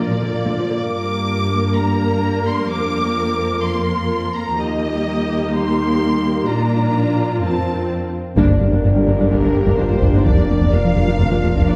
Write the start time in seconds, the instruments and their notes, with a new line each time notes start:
Already playing: ambient pad F3 A#3 F4 A#4, viola section A#4, violin section D5
0.09 cello section A#2, viola section F3
0.21 cello section A#2, viola section D3
0.33 cello section A#2, viola section A#3
0.45 cello section A#2, viola section D3
0.57 cello section A#2, viola section F3
0.68 cello section A#2, viola section D3
0.80 cello section G2, ambient pad G3 D4, viola section A#3 A#4, violin section D6
1.76 violin section A#5
2.48 violin section C6
2.69 cello section F2, ambient pad F3 F4, violin section D6
3.64 violin section C6
4.36 violin section A#5
4.58 cello section D#2, ambient pad G3 A#3 D#4 A#4, viola section A#3 G4, violin section D#5
5.54 violin section C6
6.47 cello section A#2, ambient pad F3 D4 F4, viola section D4 F4, violin section A#5
7.42 cello section F2, viola section C4, ambient pad C4 C5, violin section A5
8.36 double bass section G1, detuned saw bass G1, analog synth bass G2, cello section G2, ambient pad A#3 D4 G4 A#4, viola section A#3 D4, french horn section D4, taiko
8.49 cello section G2, analog synth bass G2, viola section A#3 D4
8.60 double bass section G1, cello section G2, analog synth bass G2, viola section G3 A#3
8.71 cello section G2, analog synth bass G2, viola section A#3 D4
8.84 double bass section G1, analog synth bass G2, cello section G2, viola section A#3 D4
8.95 cello section G2, viola section G3 A#3, analog synth bass G3
9.07 double bass section G1, cello section G2, analog synth bass G2, viola section A#3 D4
9.20 cello section G2, analog synth bass G3, viola section A#3 D4
9.31 double bass section G1, analog synth bass G2, cello section G2, viola section A#3 D4, french horn section G4, violin section A#4, taiko
9.43 cello section G2, analog synth bass G3, viola section A#3 D4
9.54 double bass section G1, analog synth bass G2, cello section G2, viola section G3 A#3
9.66 analog synth bass G2, cello section G2, viola section A#3 D4, taiko
9.78 double bass section G1, cello section G2, analog synth bass G3, viola section A#3 D4, french horn section F4, violin section C5
9.90 analog synth bass G2, cello section G2, viola section G3 A#3
10.02 double bass section G1, cello section G2, analog synth bass G2, viola section A#3 D4, taiko
10.13 cello section G2, analog synth bass G2, viola section A#3 D4, french horn section D#4
10.25 double bass section F1, detuned saw bass F1, analog synth bass F2, cello section F2, viola section A#3 D4, french horn section D4, ambient pad F4, violin section D5, taiko
10.37 analog synth bass F2, cello section F2, viola section A#3 D4
10.48 double bass section F1, cello section F2, analog synth bass F2, viola section F3 A#3
10.61 cello section F2, analog synth bass F2, viola section A#3 D4
10.72 double bass section F1, analog synth bass F2, cello section F2, viola section A#3 D4, violin section F5
10.84 cello section F2, viola section F3 A#3, analog synth bass F3
10.96 double bass section F1, analog synth bass F2, cello section F2, viola section A#3 D4
11.08 cello section F2, analog synth bass F3, viola section A#3 D4
11.19 double bass section F1, cello section F2, analog synth bass F2, viola section A#3 D4, french horn section F4, taiko
11.31 cello section F2, analog synth bass F3, viola section A#3 D4
11.43 double bass section F1, analog synth bass F2, cello section F2, viola section F3 A#3
11.55 cello section F2, analog synth bass F2, viola section A#3 D4, taiko
11.67 double bass section F1, cello section F2, analog synth bass F3, viola section A#3 D4, french horn section F4, violin section D5